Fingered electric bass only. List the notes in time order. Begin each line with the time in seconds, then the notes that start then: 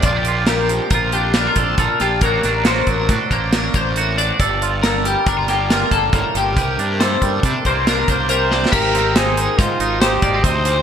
0.03 A#1
0.91 A#1
1.56 A#1
1.78 A#1
2.01 A#1
2.22 A1
2.44 A1
2.87 A1
3.09 A2
3.31 A1
3.74 A1
4.40 G1
5.27 G1
5.92 G1
6.13 G1
6.35 G1
6.56 C2
6.78 G2
7.22 G2
7.43 C3
7.65 C2
8.08 C2
8.73 G#1
9.59 G#2
9.80 G#1
10.23 G#1
10.44 D2